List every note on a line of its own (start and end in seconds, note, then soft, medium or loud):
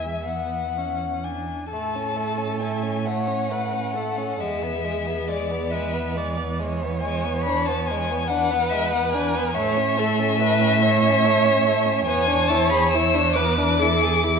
0.00 1.47 E2 soft
0.00 1.01 E5 medium
0.00 0.23 G#5 medium
0.05 0.27 G#3 soft
0.26 0.79 B3 medium
0.26 1.25 F#5 medium
0.77 1.26 C#4 soft
1.24 1.71 D4 soft
1.24 1.68 G#5 medium
1.69 4.41 A2 medium
1.69 1.97 A3 medium
1.69 3.09 A4 medium
1.69 2.58 A5 medium
1.95 2.18 C#4 soft
2.16 2.39 A3 medium
2.38 2.62 C#4 soft
2.60 2.85 A3 soft
2.60 3.07 G#5 medium
2.83 3.08 C#4 soft
3.05 3.29 A3 soft
3.05 3.52 C#5 medium
3.05 4.42 F#5 medium
3.28 3.51 C#4 medium
3.50 3.75 A3 soft
3.50 3.96 B4 medium
3.73 3.97 C#4 soft
3.96 4.19 A3 medium
3.96 4.42 A4 medium
4.18 4.39 C#4 medium
4.40 9.58 E2 medium
4.40 4.64 G#3 medium
4.40 5.73 G#4 medium
4.40 5.29 E5 medium
4.62 4.86 B3 medium
4.84 5.08 G#3 medium
5.07 5.31 B3 medium
5.28 5.52 G#3 medium
5.28 5.72 D5 medium
5.51 5.75 B3 medium
5.71 5.95 G#3 medium
5.71 6.18 B4 medium
5.71 6.15 E5 medium
5.93 6.17 B3 medium
6.16 6.39 G#3 medium
6.16 6.62 D5 medium
6.37 6.61 B3 medium
6.60 6.83 G#3 medium
6.60 8.28 C#5 medium
6.82 7.03 B3 medium
7.01 7.27 G#3 medium
7.01 7.41 G#5 loud
7.26 7.48 B3 medium
7.43 7.69 D4 medium
7.43 7.67 B5 loud
7.66 7.92 B3 medium
7.66 7.88 A5 medium
7.86 8.29 G#5 loud
7.91 8.12 G#3 medium
8.10 8.31 B3 medium
8.28 8.53 D4 medium
8.28 9.54 B4 medium
8.28 8.71 F#5 loud
8.51 8.74 B3 medium
8.70 8.95 G#3 medium
8.70 8.91 E5 loud
8.92 9.16 B3 medium
8.92 9.11 F#5 medium
9.12 9.37 D4 medium
9.12 9.56 G#5 medium
9.35 9.55 B3 medium
9.54 12.06 A2 medium
9.54 9.79 A3 medium
9.54 10.00 C#5 medium
9.54 12.04 E5 loud
9.77 9.99 C#4 medium
9.97 10.21 A3 medium
9.97 10.41 A4 medium
10.20 10.42 C#4 medium
10.41 10.62 A3 medium
10.41 10.82 B4 medium
10.61 10.83 C#4 medium
10.81 11.04 A3 medium
10.81 12.03 C#5 loud
11.03 11.26 C#4 medium
11.25 11.46 A3 medium
11.45 11.67 C#4 medium
11.66 11.87 A3 medium
11.85 12.06 C#4 medium
12.04 14.39 E2 medium
12.04 12.29 B3 medium
12.04 13.37 C#5 loud
12.04 12.49 G#5 loud
12.28 12.51 D4 medium
12.47 12.72 E4 medium
12.47 12.71 A5 loud
12.70 12.96 G#4 medium
12.70 12.90 B5 loud
12.91 13.35 E6 loud
12.95 13.16 E4 medium
13.14 13.39 D4 medium
13.34 13.60 B3 medium
13.34 13.80 B4 medium
13.34 14.39 D6 loud
13.58 13.83 D4 medium
13.79 14.03 E4 medium
13.79 14.22 A4 medium
14.01 14.26 G#4 medium
14.21 14.39 E4 medium
14.21 14.39 G#4 medium